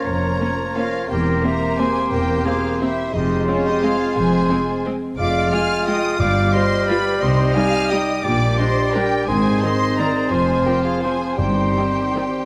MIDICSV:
0, 0, Header, 1, 12, 480
1, 0, Start_track
1, 0, Key_signature, -4, "minor"
1, 0, Tempo, 344037
1, 84, Time_signature, 3, 2, 24, 8
1, 3925, Tempo, 338028
1, 7289, Key_signature, -3, "minor"
1, 9205, Tempo, 344234
1, 14965, Tempo, 369231
1, 17290, End_track
2, 0, Start_track
2, 0, Title_t, "Violin section"
2, 0, Program_c, 0, 48
2, 69, Note_on_c, 0, 82, 81
2, 1050, Note_on_c, 0, 77, 81
2, 1051, Note_off_c, 0, 82, 0
2, 1515, Note_on_c, 0, 79, 71
2, 1524, Note_off_c, 0, 77, 0
2, 1984, Note_off_c, 0, 79, 0
2, 1989, Note_on_c, 0, 82, 81
2, 2474, Note_off_c, 0, 82, 0
2, 2475, Note_on_c, 0, 80, 86
2, 2945, Note_off_c, 0, 80, 0
2, 2952, Note_on_c, 0, 79, 77
2, 3418, Note_off_c, 0, 79, 0
2, 3425, Note_on_c, 0, 77, 79
2, 3917, Note_on_c, 0, 76, 83
2, 3924, Note_off_c, 0, 77, 0
2, 4379, Note_off_c, 0, 76, 0
2, 4380, Note_on_c, 0, 75, 79
2, 4862, Note_off_c, 0, 75, 0
2, 4867, Note_on_c, 0, 73, 87
2, 5117, Note_off_c, 0, 73, 0
2, 5131, Note_on_c, 0, 75, 93
2, 5360, Note_on_c, 0, 77, 94
2, 5378, Note_off_c, 0, 75, 0
2, 5831, Note_on_c, 0, 80, 85
2, 5833, Note_off_c, 0, 77, 0
2, 6817, Note_off_c, 0, 80, 0
2, 7293, Note_on_c, 0, 86, 98
2, 7730, Note_off_c, 0, 86, 0
2, 7757, Note_on_c, 0, 89, 110
2, 8247, Note_off_c, 0, 89, 0
2, 8262, Note_on_c, 0, 87, 106
2, 8723, Note_off_c, 0, 87, 0
2, 8744, Note_on_c, 0, 86, 101
2, 9212, Note_off_c, 0, 86, 0
2, 9217, Note_on_c, 0, 84, 112
2, 9696, Note_on_c, 0, 83, 105
2, 9703, Note_off_c, 0, 84, 0
2, 10153, Note_off_c, 0, 83, 0
2, 10161, Note_on_c, 0, 84, 91
2, 10629, Note_on_c, 0, 89, 118
2, 10637, Note_off_c, 0, 84, 0
2, 11122, Note_off_c, 0, 89, 0
2, 11129, Note_on_c, 0, 87, 99
2, 11594, Note_on_c, 0, 86, 95
2, 11604, Note_off_c, 0, 87, 0
2, 12066, Note_on_c, 0, 84, 98
2, 12077, Note_off_c, 0, 86, 0
2, 12570, Note_on_c, 0, 79, 104
2, 12575, Note_off_c, 0, 84, 0
2, 13039, Note_on_c, 0, 80, 99
2, 13046, Note_off_c, 0, 79, 0
2, 13505, Note_on_c, 0, 84, 109
2, 13516, Note_off_c, 0, 80, 0
2, 14007, Note_on_c, 0, 82, 96
2, 14009, Note_off_c, 0, 84, 0
2, 14472, Note_on_c, 0, 80, 90
2, 14480, Note_off_c, 0, 82, 0
2, 14954, Note_on_c, 0, 79, 87
2, 14958, Note_off_c, 0, 80, 0
2, 15199, Note_off_c, 0, 79, 0
2, 15199, Note_on_c, 0, 77, 78
2, 15426, Note_on_c, 0, 80, 84
2, 15435, Note_off_c, 0, 77, 0
2, 15896, Note_off_c, 0, 80, 0
2, 15900, Note_on_c, 0, 79, 83
2, 17290, Note_off_c, 0, 79, 0
2, 17290, End_track
3, 0, Start_track
3, 0, Title_t, "Oboe"
3, 0, Program_c, 1, 68
3, 0, Note_on_c, 1, 73, 60
3, 1474, Note_off_c, 1, 73, 0
3, 1529, Note_on_c, 1, 72, 63
3, 4336, Note_off_c, 1, 72, 0
3, 4389, Note_on_c, 1, 72, 66
3, 6864, Note_off_c, 1, 72, 0
3, 7285, Note_on_c, 1, 77, 71
3, 10106, Note_off_c, 1, 77, 0
3, 10153, Note_on_c, 1, 75, 71
3, 11587, Note_on_c, 1, 74, 70
3, 11608, Note_off_c, 1, 75, 0
3, 13037, Note_off_c, 1, 74, 0
3, 13046, Note_on_c, 1, 72, 70
3, 15849, Note_off_c, 1, 72, 0
3, 15911, Note_on_c, 1, 72, 62
3, 16970, Note_off_c, 1, 72, 0
3, 17290, End_track
4, 0, Start_track
4, 0, Title_t, "Flute"
4, 0, Program_c, 2, 73
4, 69, Note_on_c, 2, 73, 79
4, 749, Note_off_c, 2, 73, 0
4, 1063, Note_on_c, 2, 70, 71
4, 1522, Note_off_c, 2, 70, 0
4, 1532, Note_on_c, 2, 70, 77
4, 2017, Note_on_c, 2, 76, 78
4, 2038, Note_off_c, 2, 70, 0
4, 2500, Note_on_c, 2, 72, 74
4, 2521, Note_off_c, 2, 76, 0
4, 2945, Note_off_c, 2, 72, 0
4, 2953, Note_on_c, 2, 70, 77
4, 3420, Note_on_c, 2, 68, 71
4, 3441, Note_off_c, 2, 70, 0
4, 3930, Note_on_c, 2, 67, 76
4, 3951, Note_off_c, 2, 68, 0
4, 4389, Note_off_c, 2, 67, 0
4, 4397, Note_on_c, 2, 67, 75
4, 4882, Note_on_c, 2, 65, 75
4, 4903, Note_off_c, 2, 67, 0
4, 5127, Note_on_c, 2, 67, 76
4, 5149, Note_off_c, 2, 65, 0
4, 5376, Note_on_c, 2, 68, 79
4, 5398, Note_off_c, 2, 67, 0
4, 5838, Note_on_c, 2, 72, 78
4, 5859, Note_off_c, 2, 68, 0
4, 6821, Note_off_c, 2, 72, 0
4, 7295, Note_on_c, 2, 77, 96
4, 7786, Note_on_c, 2, 80, 87
4, 7807, Note_off_c, 2, 77, 0
4, 8247, Note_off_c, 2, 80, 0
4, 8255, Note_on_c, 2, 79, 93
4, 8720, Note_off_c, 2, 79, 0
4, 8731, Note_on_c, 2, 77, 89
4, 9191, Note_on_c, 2, 75, 92
4, 9212, Note_off_c, 2, 77, 0
4, 9688, Note_on_c, 2, 74, 82
4, 9709, Note_off_c, 2, 75, 0
4, 10134, Note_on_c, 2, 75, 86
4, 10155, Note_off_c, 2, 74, 0
4, 10616, Note_on_c, 2, 80, 98
4, 10636, Note_off_c, 2, 75, 0
4, 11112, Note_on_c, 2, 79, 82
4, 11133, Note_off_c, 2, 80, 0
4, 11562, Note_off_c, 2, 79, 0
4, 11570, Note_on_c, 2, 79, 84
4, 12039, Note_off_c, 2, 79, 0
4, 12048, Note_on_c, 2, 75, 94
4, 12540, Note_on_c, 2, 70, 88
4, 12561, Note_off_c, 2, 75, 0
4, 13013, Note_off_c, 2, 70, 0
4, 13021, Note_on_c, 2, 72, 83
4, 13527, Note_on_c, 2, 75, 93
4, 13548, Note_off_c, 2, 72, 0
4, 14023, Note_on_c, 2, 74, 90
4, 14044, Note_off_c, 2, 75, 0
4, 14470, Note_on_c, 2, 72, 79
4, 14490, Note_off_c, 2, 74, 0
4, 14945, Note_on_c, 2, 70, 69
4, 14966, Note_off_c, 2, 72, 0
4, 15173, Note_off_c, 2, 70, 0
4, 15181, Note_on_c, 2, 68, 67
4, 15414, Note_on_c, 2, 72, 74
4, 15433, Note_off_c, 2, 68, 0
4, 15872, Note_off_c, 2, 72, 0
4, 15879, Note_on_c, 2, 72, 74
4, 17290, Note_off_c, 2, 72, 0
4, 17290, End_track
5, 0, Start_track
5, 0, Title_t, "Violin section"
5, 0, Program_c, 3, 48
5, 82, Note_on_c, 3, 70, 68
5, 1057, Note_off_c, 3, 70, 0
5, 1070, Note_on_c, 3, 65, 63
5, 1525, Note_off_c, 3, 65, 0
5, 1535, Note_on_c, 3, 67, 64
5, 2001, Note_on_c, 3, 70, 72
5, 2004, Note_off_c, 3, 67, 0
5, 2490, Note_off_c, 3, 70, 0
5, 2496, Note_on_c, 3, 68, 66
5, 2952, Note_on_c, 3, 67, 72
5, 2956, Note_off_c, 3, 68, 0
5, 3418, Note_off_c, 3, 67, 0
5, 3422, Note_on_c, 3, 65, 76
5, 3923, Note_off_c, 3, 65, 0
5, 3929, Note_on_c, 3, 64, 69
5, 4394, Note_off_c, 3, 64, 0
5, 4401, Note_on_c, 3, 63, 73
5, 4873, Note_off_c, 3, 63, 0
5, 4891, Note_on_c, 3, 61, 83
5, 5129, Note_off_c, 3, 61, 0
5, 5135, Note_on_c, 3, 63, 79
5, 5380, Note_off_c, 3, 63, 0
5, 5385, Note_on_c, 3, 65, 73
5, 5841, Note_on_c, 3, 68, 79
5, 5846, Note_off_c, 3, 65, 0
5, 6803, Note_off_c, 3, 68, 0
5, 7293, Note_on_c, 3, 74, 83
5, 7729, Note_off_c, 3, 74, 0
5, 7773, Note_on_c, 3, 77, 97
5, 8265, Note_off_c, 3, 77, 0
5, 8267, Note_on_c, 3, 75, 82
5, 8732, Note_on_c, 3, 74, 82
5, 8736, Note_off_c, 3, 75, 0
5, 9197, Note_off_c, 3, 74, 0
5, 9200, Note_on_c, 3, 72, 90
5, 9685, Note_off_c, 3, 72, 0
5, 9696, Note_on_c, 3, 71, 85
5, 10154, Note_on_c, 3, 72, 87
5, 10163, Note_off_c, 3, 71, 0
5, 10634, Note_off_c, 3, 72, 0
5, 10647, Note_on_c, 3, 77, 105
5, 11139, Note_on_c, 3, 75, 81
5, 11141, Note_off_c, 3, 77, 0
5, 11608, Note_on_c, 3, 74, 86
5, 11609, Note_off_c, 3, 75, 0
5, 12074, Note_off_c, 3, 74, 0
5, 12079, Note_on_c, 3, 72, 90
5, 12567, Note_on_c, 3, 67, 76
5, 12571, Note_off_c, 3, 72, 0
5, 13045, Note_off_c, 3, 67, 0
5, 13046, Note_on_c, 3, 68, 83
5, 13525, Note_on_c, 3, 72, 90
5, 13529, Note_off_c, 3, 68, 0
5, 14012, Note_on_c, 3, 70, 78
5, 14019, Note_off_c, 3, 72, 0
5, 14483, Note_off_c, 3, 70, 0
5, 14486, Note_on_c, 3, 68, 70
5, 14956, Note_off_c, 3, 68, 0
5, 14962, Note_on_c, 3, 67, 83
5, 15203, Note_off_c, 3, 67, 0
5, 15203, Note_on_c, 3, 65, 73
5, 15437, Note_on_c, 3, 68, 69
5, 15442, Note_off_c, 3, 65, 0
5, 15893, Note_off_c, 3, 68, 0
5, 15895, Note_on_c, 3, 67, 75
5, 17290, Note_off_c, 3, 67, 0
5, 17290, End_track
6, 0, Start_track
6, 0, Title_t, "Clarinet"
6, 0, Program_c, 4, 71
6, 0, Note_on_c, 4, 65, 55
6, 1529, Note_on_c, 4, 67, 61
6, 1550, Note_off_c, 4, 65, 0
6, 4153, Note_off_c, 4, 67, 0
6, 4394, Note_on_c, 4, 65, 62
6, 6866, Note_off_c, 4, 65, 0
6, 7291, Note_on_c, 4, 65, 64
6, 8729, Note_on_c, 4, 67, 74
6, 8750, Note_off_c, 4, 65, 0
6, 11598, Note_off_c, 4, 67, 0
6, 11606, Note_on_c, 4, 67, 66
6, 13043, Note_on_c, 4, 68, 68
6, 13064, Note_off_c, 4, 67, 0
6, 14489, Note_on_c, 4, 65, 60
6, 14510, Note_off_c, 4, 68, 0
6, 15682, Note_off_c, 4, 65, 0
6, 15903, Note_on_c, 4, 63, 53
6, 16966, Note_off_c, 4, 63, 0
6, 17290, End_track
7, 0, Start_track
7, 0, Title_t, "Viola section"
7, 0, Program_c, 5, 48
7, 567, Note_on_c, 5, 58, 52
7, 568, Note_on_c, 5, 61, 50
7, 678, Note_off_c, 5, 58, 0
7, 680, Note_off_c, 5, 61, 0
7, 1059, Note_on_c, 5, 61, 55
7, 1060, Note_on_c, 5, 58, 58
7, 1171, Note_off_c, 5, 61, 0
7, 1172, Note_off_c, 5, 58, 0
7, 2001, Note_on_c, 5, 58, 52
7, 2001, Note_on_c, 5, 60, 54
7, 2113, Note_off_c, 5, 58, 0
7, 2113, Note_off_c, 5, 60, 0
7, 2492, Note_on_c, 5, 58, 57
7, 2494, Note_on_c, 5, 60, 55
7, 2603, Note_off_c, 5, 58, 0
7, 2605, Note_off_c, 5, 60, 0
7, 3425, Note_on_c, 5, 58, 58
7, 3427, Note_on_c, 5, 60, 51
7, 3536, Note_off_c, 5, 58, 0
7, 3539, Note_off_c, 5, 60, 0
7, 3925, Note_on_c, 5, 60, 64
7, 3926, Note_on_c, 5, 58, 57
7, 4039, Note_off_c, 5, 58, 0
7, 4039, Note_off_c, 5, 60, 0
7, 4869, Note_on_c, 5, 60, 57
7, 4874, Note_on_c, 5, 56, 52
7, 4982, Note_off_c, 5, 60, 0
7, 4988, Note_off_c, 5, 56, 0
7, 5377, Note_on_c, 5, 56, 62
7, 5379, Note_on_c, 5, 60, 56
7, 5491, Note_off_c, 5, 56, 0
7, 5492, Note_off_c, 5, 60, 0
7, 6318, Note_on_c, 5, 56, 62
7, 6318, Note_on_c, 5, 60, 59
7, 6431, Note_off_c, 5, 56, 0
7, 6431, Note_off_c, 5, 60, 0
7, 6835, Note_on_c, 5, 56, 64
7, 6837, Note_on_c, 5, 60, 65
7, 6949, Note_off_c, 5, 56, 0
7, 6951, Note_off_c, 5, 60, 0
7, 7775, Note_on_c, 5, 56, 62
7, 7776, Note_on_c, 5, 65, 63
7, 7888, Note_off_c, 5, 56, 0
7, 7890, Note_off_c, 5, 65, 0
7, 8269, Note_on_c, 5, 65, 68
7, 8271, Note_on_c, 5, 56, 66
7, 8383, Note_off_c, 5, 65, 0
7, 8385, Note_off_c, 5, 56, 0
7, 9220, Note_on_c, 5, 65, 61
7, 9223, Note_on_c, 5, 55, 58
7, 9332, Note_off_c, 5, 65, 0
7, 9334, Note_off_c, 5, 55, 0
7, 9706, Note_on_c, 5, 65, 74
7, 9709, Note_on_c, 5, 55, 75
7, 9818, Note_off_c, 5, 65, 0
7, 9820, Note_off_c, 5, 55, 0
7, 10638, Note_on_c, 5, 55, 65
7, 10641, Note_on_c, 5, 63, 65
7, 10750, Note_off_c, 5, 55, 0
7, 10753, Note_off_c, 5, 63, 0
7, 11135, Note_on_c, 5, 55, 73
7, 11136, Note_on_c, 5, 63, 74
7, 11246, Note_off_c, 5, 55, 0
7, 11247, Note_off_c, 5, 63, 0
7, 12082, Note_on_c, 5, 55, 58
7, 12084, Note_on_c, 5, 62, 62
7, 12193, Note_off_c, 5, 55, 0
7, 12195, Note_off_c, 5, 62, 0
7, 12585, Note_on_c, 5, 62, 71
7, 12587, Note_on_c, 5, 55, 71
7, 12696, Note_off_c, 5, 62, 0
7, 12699, Note_off_c, 5, 55, 0
7, 13537, Note_on_c, 5, 51, 60
7, 13538, Note_on_c, 5, 60, 61
7, 13648, Note_off_c, 5, 51, 0
7, 13649, Note_off_c, 5, 60, 0
7, 14028, Note_on_c, 5, 60, 58
7, 14029, Note_on_c, 5, 51, 64
7, 14139, Note_off_c, 5, 60, 0
7, 14141, Note_off_c, 5, 51, 0
7, 14978, Note_on_c, 5, 53, 49
7, 14980, Note_on_c, 5, 60, 52
7, 15082, Note_off_c, 5, 53, 0
7, 15084, Note_off_c, 5, 60, 0
7, 15454, Note_on_c, 5, 60, 55
7, 15458, Note_on_c, 5, 53, 59
7, 15558, Note_off_c, 5, 60, 0
7, 15562, Note_off_c, 5, 53, 0
7, 16401, Note_on_c, 5, 60, 45
7, 16403, Note_on_c, 5, 51, 50
7, 16505, Note_off_c, 5, 60, 0
7, 16507, Note_off_c, 5, 51, 0
7, 16905, Note_on_c, 5, 51, 59
7, 16907, Note_on_c, 5, 60, 57
7, 17009, Note_off_c, 5, 51, 0
7, 17011, Note_off_c, 5, 60, 0
7, 17290, End_track
8, 0, Start_track
8, 0, Title_t, "French horn section"
8, 0, Program_c, 6, 60
8, 0, Note_on_c, 6, 58, 61
8, 0, Note_on_c, 6, 61, 56
8, 1478, Note_off_c, 6, 58, 0
8, 1478, Note_off_c, 6, 61, 0
8, 1502, Note_on_c, 6, 58, 62
8, 1505, Note_on_c, 6, 60, 66
8, 4323, Note_off_c, 6, 58, 0
8, 4363, Note_off_c, 6, 60, 0
8, 4370, Note_on_c, 6, 56, 68
8, 4380, Note_on_c, 6, 60, 66
8, 7220, Note_off_c, 6, 56, 0
8, 7225, Note_off_c, 6, 60, 0
8, 7302, Note_on_c, 6, 65, 76
8, 7305, Note_on_c, 6, 56, 72
8, 8711, Note_off_c, 6, 56, 0
8, 8740, Note_on_c, 6, 55, 86
8, 9929, Note_off_c, 6, 65, 0
8, 10167, Note_on_c, 6, 63, 69
8, 11580, Note_off_c, 6, 63, 0
8, 11581, Note_off_c, 6, 55, 0
8, 11598, Note_on_c, 6, 55, 75
8, 11604, Note_on_c, 6, 62, 77
8, 13019, Note_off_c, 6, 55, 0
8, 13037, Note_on_c, 6, 56, 69
8, 13037, Note_on_c, 6, 60, 71
8, 13051, Note_off_c, 6, 62, 0
8, 14478, Note_on_c, 6, 53, 65
8, 14480, Note_off_c, 6, 56, 0
8, 15872, Note_off_c, 6, 53, 0
8, 15877, Note_off_c, 6, 60, 0
8, 15893, Note_on_c, 6, 60, 66
8, 15902, Note_on_c, 6, 51, 61
8, 17290, Note_off_c, 6, 51, 0
8, 17290, Note_off_c, 6, 60, 0
8, 17290, End_track
9, 0, Start_track
9, 0, Title_t, "Bassoon"
9, 0, Program_c, 7, 70
9, 0, Note_on_c, 7, 53, 56
9, 1517, Note_on_c, 7, 58, 66
9, 1538, Note_off_c, 7, 53, 0
9, 4138, Note_off_c, 7, 58, 0
9, 4379, Note_on_c, 7, 56, 72
9, 6859, Note_off_c, 7, 56, 0
9, 7292, Note_on_c, 7, 56, 71
9, 8677, Note_off_c, 7, 56, 0
9, 8725, Note_on_c, 7, 55, 81
9, 11549, Note_off_c, 7, 55, 0
9, 11594, Note_on_c, 7, 55, 78
9, 13051, Note_on_c, 7, 51, 70
9, 13072, Note_off_c, 7, 55, 0
9, 14465, Note_off_c, 7, 51, 0
9, 14473, Note_on_c, 7, 53, 75
9, 15903, Note_on_c, 7, 55, 67
9, 15923, Note_off_c, 7, 53, 0
9, 17290, Note_off_c, 7, 55, 0
9, 17290, End_track
10, 0, Start_track
10, 0, Title_t, "Timpani"
10, 0, Program_c, 8, 47
10, 8728, Note_on_c, 8, 43, 80
10, 9401, Note_off_c, 8, 43, 0
10, 15904, Note_on_c, 8, 43, 81
10, 16592, Note_off_c, 8, 43, 0
10, 17290, End_track
11, 0, Start_track
11, 0, Title_t, "Cello section"
11, 0, Program_c, 10, 48
11, 86, Note_on_c, 10, 41, 68
11, 481, Note_off_c, 10, 41, 0
11, 1531, Note_on_c, 10, 40, 74
11, 1920, Note_off_c, 10, 40, 0
11, 2947, Note_on_c, 10, 40, 77
11, 3342, Note_off_c, 10, 40, 0
11, 4391, Note_on_c, 10, 41, 85
11, 4785, Note_off_c, 10, 41, 0
11, 5842, Note_on_c, 10, 41, 88
11, 6234, Note_off_c, 10, 41, 0
11, 7297, Note_on_c, 10, 41, 89
11, 7682, Note_off_c, 10, 41, 0
11, 8729, Note_on_c, 10, 43, 90
11, 9122, Note_off_c, 10, 43, 0
11, 10160, Note_on_c, 10, 48, 98
11, 10554, Note_off_c, 10, 48, 0
11, 11597, Note_on_c, 10, 46, 90
11, 11995, Note_off_c, 10, 46, 0
11, 13040, Note_on_c, 10, 44, 93
11, 13443, Note_off_c, 10, 44, 0
11, 14482, Note_on_c, 10, 41, 87
11, 14879, Note_off_c, 10, 41, 0
11, 15909, Note_on_c, 10, 43, 81
11, 16306, Note_off_c, 10, 43, 0
11, 17290, End_track
12, 0, Start_track
12, 0, Title_t, "Double bass section"
12, 0, Program_c, 11, 48
12, 83, Note_on_c, 11, 29, 59
12, 479, Note_off_c, 11, 29, 0
12, 1526, Note_on_c, 11, 28, 62
12, 1917, Note_off_c, 11, 28, 0
12, 2956, Note_on_c, 11, 28, 64
12, 3346, Note_off_c, 11, 28, 0
12, 4395, Note_on_c, 11, 29, 75
12, 4787, Note_off_c, 11, 29, 0
12, 5844, Note_on_c, 11, 29, 74
12, 6235, Note_off_c, 11, 29, 0
12, 7295, Note_on_c, 11, 29, 69
12, 7681, Note_off_c, 11, 29, 0
12, 8735, Note_on_c, 11, 31, 81
12, 9125, Note_off_c, 11, 31, 0
12, 10157, Note_on_c, 11, 36, 80
12, 10552, Note_off_c, 11, 36, 0
12, 11603, Note_on_c, 11, 34, 81
12, 11998, Note_off_c, 11, 34, 0
12, 13046, Note_on_c, 11, 32, 83
12, 13446, Note_off_c, 11, 32, 0
12, 14484, Note_on_c, 11, 29, 75
12, 14880, Note_off_c, 11, 29, 0
12, 15906, Note_on_c, 11, 31, 64
12, 16304, Note_off_c, 11, 31, 0
12, 17290, End_track
0, 0, End_of_file